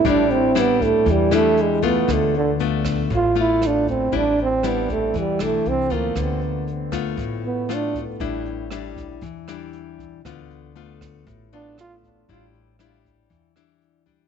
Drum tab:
HH |xxxxx-x-|xxx-xxxx|xxxxxxxx|xxxxxxxx|
SD |--r--r--|r--r--r-|--r--r--|r--r--r-|
BD |o--oo--o|o--oo--o|o--oo--o|o--oo--o|

HH |xxxxx-xx|xxxxxxxx|xxxxx-x-|
SD |--r--r--|r--r--r-|--r--r--|
BD |o--oo--o|o--oo--o|o--oo--o|